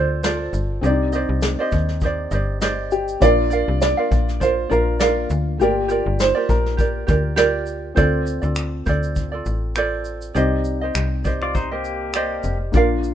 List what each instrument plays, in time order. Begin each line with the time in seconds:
Already playing: fm bass D2, felt piano C4 F4 A4 D5, ukulele F4 A4 C5 D5, upright piano C5
0.23 ukulele F4 A4 C5 D5, snare, shaker
0.53 fm bass G1, shaker
0.81 fm bass C2, felt piano C4 D4 G4 D5, ukulele G4 D#5, shaker
0.85 felt piano D#4, ukulele C5 D5
1.13 ukulele G4 C5 D5 D#5, shaker
1.29 fm bass C2
1.42 snare, shaker
1.59 ukulele G4 C5 D5 D#5
1.72 fm bass D#2, kick, shaker
1.89 snare
2.01 ukulele G4 C5 D#5, kick, shaker
2.06 ukulele D5
2.31 fm bass G1, ukulele G4 C5 D5 D#5, shaker
2.61 ukulele G4 C5 D5 D#5, snare, shaker
2.91 upright piano G4, shaker
3.08 shaker
3.20 fm bass A#1, felt piano A#3 D4 F4 D5, ukulele F4 A#4 D5 F5, upright piano D5, kick, shaker
3.50 ukulele F4 A#4 D5 F5, shaker
3.68 fm bass C2
3.81 upright piano D5, snare, shaker
3.97 ukulele F4 A#4 D5 F5
4.11 fm bass A#1, kick, shaker
4.29 snare, shaker
4.40 ukulele F4 A#4 D5 F5, upright piano C5, kick, shaker
4.69 fm bass A#1, felt piano A#3 D4 F4 D5, ukulele F4 A#4 D5 F5, upright piano A#4, shaker
5.00 ukulele F4 A#4 D5 F5, snare, shaker
5.30 fm bass D2, shaker
5.58 fm bass G1, felt piano A3 F4 G4, ukulele F4 G4 A#4, upright piano G4, shaker
5.62 felt piano A#3 D5, ukulele D5
5.88 ukulele F4 G4 A#4 D5, shaker
6.06 fm bass G1
6.19 upright piano C5, snare, shaker
6.35 ukulele F4 G4 A#4 D5
6.49 fm bass A#1, upright piano A#4, kick, shaker
6.66 snare
6.77 ukulele F4 G4 A#4 D5, kick, shaker
7.07 fm bass D2, ukulele F4 G4 A#4 D5, kick, shaker
7.36 ukulele F4 G4 A#4 D5, snare, shaker
7.66 shaker
7.95 fm bass D2, felt piano C4 F4 A4 D5, ukulele F4 A4 C5 D5, kick, shaker
8.27 shaker
8.42 fm bass D2, ukulele F4 A4 D5, shaker
8.56 finger snap, shaker
8.86 fm bass D2, ukulele F4 A4 C5 D5, kick, shaker
9.03 shaker
9.16 kick, shaker
9.32 ukulele F4 A4 D5
9.46 fm bass A1, shaker
9.76 ukulele F4 A4 C5 D5, finger snap, shaker
10.05 shaker
10.22 shaker
10.34 fm bass C2, felt piano C4 D#4 G4, ukulele G4 C5 D5 D#5, shaker
10.39 felt piano D5
10.65 shaker
10.81 ukulele G4 C5 D#5
10.95 fm bass C2, finger snap, shaker
11.24 ukulele G4 C5 D5 D#5, kick, shaker
11.42 pedal steel guitar F4 D5, finger snap
11.55 pedal steel guitar D#4 C5, kick, shaker
11.71 pedal steel guitar A#3 G4, ukulele G4 C5 D#5
11.85 shaker
12.14 ukulele G4 C5 D5 D#5, finger snap, shaker
12.43 fm bass F1, shaker
12.72 fm bass A#1, felt piano A#3 D4 F4 D5, ukulele F4 D5, kick, shaker
12.76 ukulele A#4 F5
13.04 shaker